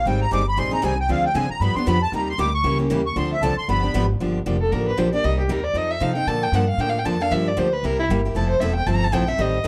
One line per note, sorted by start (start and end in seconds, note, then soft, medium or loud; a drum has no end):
0.06 0.31 G#1 medium
0.06 0.24 D#3 medium
0.06 0.24 G3 medium
0.06 0.24 C4 medium
0.06 0.24 D#4 medium
0.06 0.24 G#4 medium
0.06 0.20 G5 medium
0.21 0.31 A#5 medium
0.32 0.56 G1 medium
0.32 0.42 D#3 medium
0.32 0.42 G3 medium
0.32 0.42 C4 medium
0.32 0.42 D#4 medium
0.32 0.42 G#4 medium
0.32 0.46 D6 loud
0.49 0.58 B5 loud
0.57 0.82 A#1 medium
0.57 0.71 D#3 medium
0.57 0.71 G3 medium
0.57 0.72 C4 medium
0.57 0.71 D#4 medium
0.57 0.70 G#4 medium
0.57 0.72 C6 loud
0.71 0.81 C4 medium
0.71 0.81 D#4 medium
0.71 0.82 G#4 medium
0.71 0.83 A#5 loud
0.82 1.08 C2 loud
0.82 0.92 D#3 medium
0.82 0.93 G3 medium
0.82 0.93 C4 loud
0.82 0.93 D#4 loud
0.82 0.93 G#4 loud
0.82 0.98 G#5 medium
1.00 1.10 G5 loud
1.09 1.34 D2 medium
1.09 1.27 D3 medium
1.09 1.27 F3 medium
1.09 1.27 C4 medium
1.09 1.27 D4 medium
1.09 1.28 G#4 medium
1.09 1.24 F5 medium
1.26 1.35 G5 medium
1.34 1.48 C2 medium
1.34 1.45 D3 loud
1.34 1.45 F3 medium
1.34 1.45 C4 medium
1.34 1.45 D4 loud
1.34 1.45 G#4 medium
1.34 1.50 G#5 loud
1.49 1.61 A#5 loud
1.49 muted upright bass stroke soft
1.60 1.74 G2 medium
1.60 1.75 D3 medium
1.60 1.75 F3 medium
1.60 1.76 B3 medium
1.60 1.75 D4 medium
1.60 1.75 G4 medium
1.60 1.75 B5 medium
1.75 1.86 B3 medium
1.75 1.86 D4 medium
1.75 1.86 G4 medium
1.75 1.86 C6 loud
1.75 muted upright bass stroke soft
1.86 2.11 F2 medium
1.86 1.97 D3 medium
1.86 1.97 F3 medium
1.86 1.97 B3 loud
1.86 1.97 D4 medium
1.86 1.97 G4 loud
1.86 2.01 B5 loud
2.02 2.13 A5 loud
2.12 2.37 D#2 medium
2.12 2.31 C3 medium
2.12 2.31 G3 medium
2.12 2.31 A#3 medium
2.12 2.31 D#4 medium
2.12 2.31 G4 medium
2.12 2.28 A#5 medium
2.30 2.39 C6 loud
2.38 2.63 D2 medium
2.38 2.49 C3 medium
2.38 2.49 G3 loud
2.38 2.49 A#3 loud
2.38 2.49 D#4 loud
2.38 2.49 G4 loud
2.38 2.53 D6 loud
2.54 2.78 C#6 loud
2.63 2.89 C#2 medium
2.63 2.78 C#3 medium
2.63 2.78 E3 medium
2.63 2.83 G3 medium
2.63 2.78 A#3 medium
2.63 2.78 C#4 medium
2.63 2.84 E4 medium
2.63 2.77 G4 medium
2.78 2.89 A#3 soft
2.78 2.89 C#4 medium
2.78 2.89 G4 medium
2.90 3.15 D#2 medium
2.90 3.00 C#3 loud
2.90 3.00 E3 medium
2.90 3.01 G3 medium
2.90 3.00 A#3 medium
2.90 3.00 C#4 medium
2.90 3.01 E4 medium
2.90 3.01 G4 loud
3.06 3.16 C#6 loud
3.16 3.40 D2 loud
3.16 3.34 D3 medium
3.16 3.34 F3 medium
3.16 3.34 C4 medium
3.16 3.34 D4 medium
3.16 3.35 A4 medium
3.16 3.31 C6 medium
3.32 3.42 E5 medium
3.41 3.55 C2 medium
3.41 3.52 D3 medium
3.41 3.52 F3 loud
3.41 3.53 C4 loud
3.41 3.53 D4 medium
3.41 3.53 A4 medium
3.41 3.56 A5 medium
3.56 3.68 C6 loud
3.56 muted upright bass stroke soft
3.68 3.93 G1 medium
3.68 3.82 D3 medium
3.68 3.83 F3 medium
3.68 3.82 B3 medium
3.68 3.82 D4 medium
3.68 3.82 G4 medium
3.68 4.06 B5 medium
3.83 3.93 B3 medium
3.83 3.93 D4 medium
3.83 3.93 G4 medium
3.94 4.19 G#1 medium
3.94 4.04 D3 medium
3.94 4.04 F3 loud
3.94 4.04 B3 loud
3.94 4.04 D4 loud
3.94 4.05 G4 loud
4.20 4.45 G1 medium
4.20 4.38 D3 medium
4.20 4.38 F3 medium
4.20 4.39 A#3 medium
4.20 4.38 D4 medium
4.20 4.39 G4 medium
4.46 4.71 F1 medium
4.46 4.56 D3 medium
4.46 4.56 F3 medium
4.46 4.56 A#3 medium
4.46 4.56 D4 medium
4.46 4.56 G4 medium
4.60 4.73 A4 medium
4.72 4.97 A1 medium
4.72 4.90 D3 medium
4.72 4.90 F3 medium
4.72 4.90 A#3 medium
4.72 4.90 D4 medium
4.72 4.90 G4 medium
4.72 4.86 A#4 medium
4.88 5.00 B4 medium
4.97 5.23 A#1 medium
4.97 5.08 D3 medium
4.97 5.08 F3 medium
4.97 5.08 A#3 loud
4.97 5.08 D4 loud
4.97 5.08 G4 loud
4.97 5.13 C5 medium
5.13 5.23 A#3 soft
5.13 5.23 D4 medium
5.13 5.23 G4 medium
5.13 5.25 D5 medium
5.24 5.47 C2 medium
5.24 5.42 C3 medium
5.24 5.42 G3 medium
5.24 5.42 A#3 medium
5.24 5.42 D#4 medium
5.24 5.42 G4 medium
5.24 5.38 D#5 medium
5.40 5.52 G4 medium
5.48 5.73 D#2 medium
5.48 5.59 C3 loud
5.48 5.59 G3 medium
5.48 5.60 A#3 medium
5.48 5.60 D#4 medium
5.48 5.60 G4 loud
5.48 5.65 A#4 medium
5.64 5.78 D5 medium
5.74 6.00 F2 medium
5.74 5.93 F3 medium
5.74 5.93 C4 medium
5.74 5.93 D#4 medium
5.74 5.94 A4 medium
5.74 5.92 D#5 medium
5.91 6.04 E5 loud
6.00 6.26 C3 medium
6.00 6.11 F3 medium
6.00 6.11 C4 medium
6.00 6.12 D#4 loud
6.00 6.12 A4 loud
6.00 6.15 F5 medium
6.15 6.27 C4 medium
6.15 6.27 D#4 medium
6.15 6.26 A4 medium
6.15 6.29 G5 medium
6.27 6.51 A#2 medium
6.27 6.45 D3 medium
6.27 6.46 F3 medium
6.27 6.46 A#3 medium
6.27 6.46 D4 medium
6.27 6.46 A4 medium
6.27 6.45 A5 loud
6.43 6.57 G5 loud
6.52 6.77 G2 medium
6.52 6.63 D3 medium
6.52 6.64 F3 medium
6.52 6.64 A#3 medium
6.52 6.64 D4 loud
6.52 6.64 A4 loud
6.52 6.69 F#5 medium
6.69 6.82 F5 medium
6.77 7.03 A2 medium
6.77 6.97 D3 medium
6.77 6.97 F3 medium
6.77 6.97 A#3 medium
6.77 6.98 D4 medium
6.77 6.98 A4 medium
6.77 6.91 G5 loud
6.89 7.00 F5 medium
6.99 7.07 G5 medium
7.05 7.30 F2 medium
7.05 7.15 D3 medium
7.05 7.16 F3 medium
7.05 7.15 A#3 medium
7.05 7.16 D4 medium
7.05 7.16 A4 medium
7.05 7.23 A5 medium
7.21 7.30 A#3 soft
7.21 7.31 D4 medium
7.21 7.31 A4 medium
7.21 7.33 F5 loud
7.31 7.56 G2 medium
7.31 7.49 D3 medium
7.31 7.49 F3 medium
7.31 7.49 A#3 medium
7.31 7.50 D4 medium
7.31 7.50 G4 medium
7.31 7.49 E5 medium
7.48 7.60 D5 medium
7.57 7.82 D2 medium
7.57 7.67 D3 medium
7.57 7.67 F3 medium
7.57 7.67 A#3 loud
7.57 7.67 D4 loud
7.57 7.67 G4 loud
7.57 7.74 C5 medium
7.73 7.86 B4 medium
7.83 8.08 C2 medium
7.83 8.02 C3 medium
7.83 8.02 G3 medium
7.83 8.02 A#3 medium
7.83 8.02 E4 medium
7.83 8.02 G4 medium
7.83 7.99 A#4 medium
7.99 8.05 E4 loud
8.09 8.34 G1 medium
8.09 8.20 C3 medium
8.09 8.20 G3 loud
8.09 8.20 A#3 loud
8.09 8.20 E4 loud
8.09 8.20 G4 loud
8.25 8.35 A#3 soft
8.25 8.35 E4 medium
8.25 8.35 G4 medium
8.35 8.59 F1 medium
8.35 8.53 F3 medium
8.35 8.54 A3 medium
8.35 8.54 C4 medium
8.35 8.54 E4 medium
8.35 8.54 A4 medium
8.35 8.49 A5 medium
8.49 8.62 C5 medium
8.60 8.86 E1 medium
8.60 8.71 F3 medium
8.60 8.71 A3 medium
8.60 8.72 C4 medium
8.60 8.72 E4 medium
8.60 8.72 A4 loud
8.60 8.75 E5 medium
8.75 8.88 G5 loud
8.86 9.12 G1 medium
8.86 9.05 F3 medium
8.86 9.05 A3 medium
8.86 9.05 C4 medium
8.86 9.05 E4 medium
8.86 9.05 A4 medium
8.86 8.97 A5 medium
8.95 9.05 A#5 loud
9.04 9.15 A5 loud
9.12 9.38 A#1 medium
9.12 9.23 F3 loud
9.12 9.23 A3 medium
9.12 9.23 C4 medium
9.12 9.23 E4 loud
9.12 9.24 A4 loud
9.12 9.29 G5 medium
9.27 9.38 C4 medium
9.27 9.39 E4 medium
9.27 9.38 A4 medium
9.27 9.42 E5 loud
9.38 9.63 A1 medium
9.38 9.57 D#3 medium
9.38 9.57 G3 medium
9.38 9.57 C4 medium
9.38 9.57 G4 medium
9.38 9.57 A4 medium
9.38 9.68 D#5 medium
9.63 9.68 C2 medium
9.63 9.68 D#3 medium
9.63 9.68 G3 medium